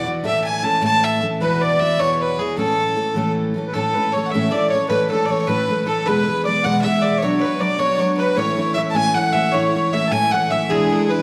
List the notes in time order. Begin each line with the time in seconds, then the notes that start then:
0.04 E3 B3 E4 F#4
0.23 A2 E3 A3 C#4 A4 E5
0.44 G#5
0.63 E3 A3 C#4 A4 A5
0.82 A2 E3 A3 C#4 A4 A5
1.04 E5
1.22 E3 A3 C#4 A4
1.40 E2 B2 E3 B3 E4 F#4 B4
1.61 D5
1.79 E3 B3 E4 F#4 E5
1.99 E2 B2 E3 B3 E4 F#4 C#5
2.13 C#5
2.20 B4
2.38 E3 B3 E4 F#4 G#4
2.57 A2 E3 A3 C#4 A4
2.96 E3 A3 C#4 A4
3.14 A2 E3 A3 C#4 A4
3.54 E3 A3 C#4 A4
3.67 B4
3.72 A2 E3 A3 C#4 A4
3.77 A4
3.94 E3 A3 C#4 B4
3.98 A4
4.12 E3 A3 C#5
4.17 C#4 A4
4.26 E5 F#5
4.30 A2 E5
4.34 E3 A3 C#4 A4
4.51 E3 A3 C#4 D5
4.55 A4
4.70 E3 C#5
4.74 A3 C#4 A4
4.88 A2 E3 A3 C#4 A4 B4
5.10 E3 A3 C#4 A4
5.14 A4
5.26 E3 A3 C#5 D5
5.30 C#4 A4 C#5
5.42 C#5
5.47 A2 E3 A3 C#4 A4 B4
5.67 E3 A3 C#4 A4
5.86 E3 A3 C#4 A4
6.06 E2 B2 E3 G#3 B3 G#4 B4
6.26 E3 G#3 B3 G#4
6.44 E3 G#3 B3 D5
6.49 G#4
6.64 E2 B2 E3 G#3 B3 G#4 F#5
6.82 E3 G#3 E5
6.86 B3 G#4
7.01 E3 G#3 B3 G#4 D5
7.18 C#5
7.22 B2 F#3 B3 D4 F#4 C#5
7.41 F#3 B3 D4 F#4 B4
7.59 F#3 B3 D4 F#4 D5
7.78 B2 F#3 B3 D4 F#4 C#5
7.95 F#3 C#5 D5
8.00 B3 D4 F#4 C#5
8.17 F#3 B3 D4 F#4 B4
8.36 A2 E3 A3 C#4 E4 C#5
8.57 E3 A3 C#4 E4
8.74 E3 A3 C#4 E5
8.78 E4
8.90 A2 A5
8.95 E3 A3 C#4 E4 G#5
9.14 E3 A3 C#4 E4 F#5
9.32 E3 A3 E5
9.36 C#4 E4
9.52 A2 E3 A3 C#4 E4 C#5
9.74 E3 A3 C#4 E4
9.92 E3 A3 C#4 E4 E5
10.07 A2 G#5 A5
10.12 E3 A3 C#4 E4 G#5
10.31 E3 A3 C#4 E4 F#5
10.50 E3 A3 C#4 E4 E5
10.69 E2 B2 E3 G#3 D4 E4 G#4
10.89 E3 G#3 D4 E4 A4
11.09 E3 G#3 D4 E4 B4